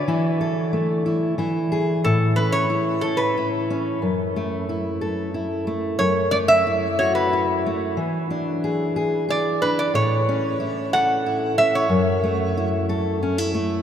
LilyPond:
<<
  \new Staff \with { instrumentName = "Resonator guitar played with a steel bar" } { \time 3/4 \key a \major \tempo 4 = 91 d''2 r4 | a'8 b'16 cis''8. a'16 b'8 r8. | r2. | cis''8 d''16 e''8. cis''16 b'8 r8. |
r2 d''8 b'16 d''16 | cis''4. fis''4 e''16 cis''16~ | cis''4~ cis''16 r4. r16 | }
  \new Staff \with { instrumentName = "Steel-string acoustic guitar" } { \time 3/4 \key a \major << { e'8 a'4 e'8 e'8 gis'8 | r8 cis'8 e'8 e'8 e'8 cis'8 | r8 a8 e'8 a'8 e'8 a8~ | a8 a8 e'8 fis'8 e'8 a8 |
r8 d'8 gis'8 gis'8 gis'8 d'8 | r8 cis'8 e'8 a'8 e'8 cis'8 | r8 a8 e'8 a'8 cis'16 e'16 a8 | } \\ { e4 a4 e4 | a,2. | fis,2. | fis,2. |
e2. | a,2. | fis,2. | } >> }
>>